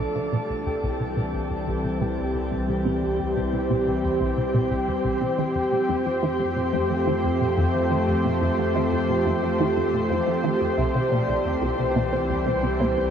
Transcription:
Already playing: D4 A4 D5
0.00 C2 E3 G4 G5
0.12 C3 G3
0.32 B2
0.36 C4
0.49 C2
0.66 E2
0.83 C2
1.00 C3
1.17 B2
1.34 C2
1.50 E2
1.67 C2
1.80 G4
1.84 C3
2.01 B2
2.18 C2
2.35 E2
2.42 C5
2.52 C2
2.68 C3
2.85 B2
3.02 C2
3.19 E2
3.36 C2
3.53 C3
3.70 B2
3.87 C2
4.03 E2
4.20 C2
4.37 C3
4.54 B2
4.71 C2
4.88 E2
5.04 C2
5.21 C3
5.38 F2 E3 F3
5.55 F2
5.72 B2
5.89 F2 A3
6.06 F3
6.23 E3
6.40 F2
6.56 B2
6.73 F2
6.90 F3
7.07 E3
7.24 F2
7.40 B2
7.57 F2
7.74 F3
7.91 E3
8.08 F2
8.25 B2
8.42 F2
8.58 F3
8.75 E3
8.92 F2
9.09 B2
9.26 F2
9.43 F3
9.60 E3
9.77 F2
9.93 B2
10.10 F2
10.27 F3
10.44 E3
10.61 F2
10.78 C2 E3 E5
10.95 C3
11.12 B2 D5
11.28 C2
11.41 G3
11.45 E2
11.62 C2
11.79 C3
11.96 B2
12.12 C2 C5
12.29 E2
12.46 C2
12.63 C3
12.80 B2 C5
12.97 C2

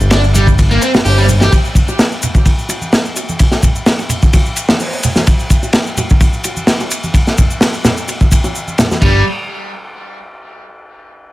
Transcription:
0.01 G1, shaker
0.10 D4, snare, ride, high bongo, shaker
0.24 ride, shaker
0.35 G3, ride, low conga, shaker
0.47 kick, shaker
0.58 kick, ride, high bongo, shaker
0.71 A#3, shaker
0.82 C4, ride, shaker
0.94 G1, snare, high bongo, high conga, shaker
1.05 G1 G4, open hi-hat, shaker
1.18 G3, shaker
1.28 ride, low conga, shaker
1.41 G4, snare, high bongo, high conga, shaker
1.52 kick, ride, high bongo, shaker
1.65 shaker
1.75 kick, ride, high conga, shaker
1.88 high bongo, shaker
1.99 snare, ride, shaker
2.12 shaker
2.22 ride, low conga, shaker
2.35 kick, high bongo, shaker
2.45 kick, ride, shaker
2.58 shaker
2.69 ride, high bongo, shaker
2.81 high conga, shaker
2.93 snare, ride, shaker
3.05 shaker
3.16 ride, high bongo, shaker
3.29 high conga, shaker
3.39 kick, ride, shaker
3.51 snare, high bongo, shaker
3.62 kick, ride, high conga, low conga, shaker
3.75 shaker
3.86 snare, ride, shaker
3.99 ride, high bongo, shaker
4.09 ride, low conga, shaker
4.22 kick, shaker
4.33 kick, ride, high bongo, shaker
4.46 shaker
4.56 ride, shaker
4.69 snare, high conga, shaker
4.80 open hi-hat, high bongo, shaker
4.92 shaker
5.03 ride, low conga, shaker
5.16 snare, high bongo, high conga, shaker
5.27 kick, ride, shaker
5.39 shaker
5.50 kick, ride, high conga, shaker
5.63 high bongo, shaker
5.73 snare, ride, shaker
5.86 shaker
5.97 ride, high bongo, low conga, shaker
6.10 kick, shaker
6.20 kick, ride, shaker
6.33 shaker
6.44 ride, high bongo, shaker
6.56 high conga, shaker
6.67 snare, ride, shaker
6.80 high bongo, shaker
6.91 ride, shaker
7.04 high conga, shaker
7.14 kick, ride, shaker
7.27 snare, high bongo, shaker
7.38 kick, ride, high conga, low conga, shaker
7.50 shaker
7.61 snare, ride, high bongo, shaker
7.74 ride, shaker
7.85 snare, ride, low conga, shaker
7.97 shaker
8.08 ride, high bongo, shaker
8.21 kick, shaker
8.32 kick, ride, shaker
8.44 high bongo, high conga, shaker
8.55 shaker
8.68 high conga, shaker
8.78 snare, ride, low conga, shaker
8.91 snare, high bongo, high conga, shaker
9.02 G1 G3, kick, crash

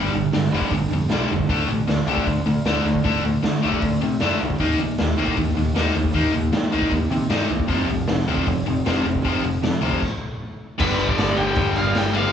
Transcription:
Already playing: G2 D3 G3
0.13 G1 G2 D3, open hi-hat
0.32 G2 D3, snare, open hi-hat
0.52 F1 G2 D3 G3, open hi-hat
0.62 kick
0.70 G1 G2 D3, kick, open hi-hat
0.74 D3
0.88 F2 G2 D3, open hi-hat
0.93 G2 D3
1.09 B1 G2 D3 G3, snare, open hi-hat
1.29 F1 G2 D3, open hi-hat
1.39 kick
1.49 D2 D3 A3 D4, kick, open hi-hat
1.67 A1 D3 A3, open hi-hat
1.87 D2 D3 A3, snare, open hi-hat
2.06 C2 D3 A3 D4, open hi-hat
2.17 kick
2.27 D2 D3 A3, kick, open hi-hat
2.45 D2 D3 A3, open hi-hat
2.65 D2 D3 A3 D4, snare, open hi-hat
2.85 D2 D3 A3, open hi-hat
2.95 kick
3.04 D2 D3 A3 D4, kick, open hi-hat
3.23 D2 D3 A3, open hi-hat
3.43 D3 A3, snare, open hi-hat
3.62 C2 D3 A3 D4, open hi-hat
3.73 kick
3.82 D2 D3 A3, kick, open hi-hat
4.01 C3 D3 A3, open hi-hat
4.20 F#2 D3 A3 D4, snare, open hi-hat
4.40 C2 D3 A3, open hi-hat
4.50 kick
4.58 D#2 D#3 A#3 D#4, kick, open hi-hat
4.78 A#1 D#3 A#3, open hi-hat
4.98 D#2 D#3 A#3, snare, open hi-hat
5.18 C2 D#3 A#3 D#4, open hi-hat
5.28 kick
5.37 D#2 D#3 A#3, kick, open hi-hat
5.57 D#2 D#3 A#3, open hi-hat
5.76 D#2 D#3 A#3 D#4, snare, open hi-hat
5.95 D#2 D#3 A#3, open hi-hat
6.05 kick
6.13 D#2 D#3 A#3 D#4, kick, open hi-hat
6.33 D#2 D#3 A#3, open hi-hat
6.53 D#3 A#3, snare, open hi-hat
6.72 C2 D#3 A#3 D#4, open hi-hat
6.82 kick
6.90 D#2 D#3 A#3, kick, open hi-hat
7.10 C3 D#3 A#3, open hi-hat
7.30 G2 D#3 A#3 D#4, snare, open hi-hat
7.50 C2 D#3 A#3, open hi-hat
7.60 kick
7.68 F1 F2 C3 F3, kick, open hi-hat
7.88 C2 F2 C3, open hi-hat
8.07 F1 F2 C3, snare, open hi-hat
8.27 D2 F2 C3 F3, open hi-hat
8.37 kick
8.47 F1 F2 C3, kick, open hi-hat
8.66 F1 F2 C3, open hi-hat
8.86 F1 F2 C3 F3, snare, open hi-hat
9.05 F1 F2 C3, open hi-hat
9.15 kick
9.24 F1 F2 C3 F3, kick, open hi-hat
9.43 F1 F2 C3, open hi-hat
9.62 F2 C3, snare, open hi-hat
9.81 D2 F2 C3 F3, open hi-hat
9.93 kick
10.02 kick, crash
10.78 G1 G2 D3 G3 B3 D4 B4, kick, crash
10.98 G2 D3 G3 B3 D4, crash
11.08 D5, kick
11.17 G1 G2 D3 G3 B3 D4, snare, crash
11.37 G1 G2 D3 G3 B3 D4 G5, crash
11.55 G1 G2 D3 G3 B3 D4, kick, crash
11.76 G1 G2 D3 G3 B3 D4 F5, crash
11.95 G1 G2 D3 G3 B3 D4 G5, snare, crash
12.13 G2 D3 G3 B3 D4 F5, crash

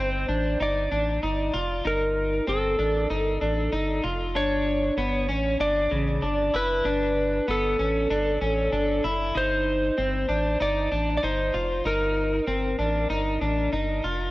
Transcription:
Already playing: G1 C4 C5
0.29 A1 D4
0.60 G1 D#4 D5
0.92 A1 D4
1.23 G1 D#4
1.54 F1 F4
1.85 G1 D#4 A#4
2.47 G1 C4 A4
2.79 A1 D4
3.10 G1 D#4
3.41 A1 D4
3.73 G1 D#4
4.04 F1 F4
4.35 G1 D4 C#5
4.98 G1 B3
5.29 A1 C#4
5.60 G1 D4 D5
5.91 A1 C#3
6.23 G1 D4
6.54 F#1 E4 B4
6.85 G1 D4
7.48 G1 B3 A4
7.79 A1 C#4
8.10 G1 D4
8.41 A1 C#4
8.73 G1 D4
9.04 F#1 E4
9.35 G1 D#4 C5
9.98 G1 C4
10.29 A1 D4
10.60 G1 D#4 D5
10.92 A1 D4
11.17 D5
11.23 G1 D#4 C5
11.54 F1 F4
11.85 G1 D#4 A#4
12.48 G1 C4
12.79 A1 D4
13.10 G1 D#4
13.41 A1 D4
13.73 G1 D#4
14.04 F1 F4

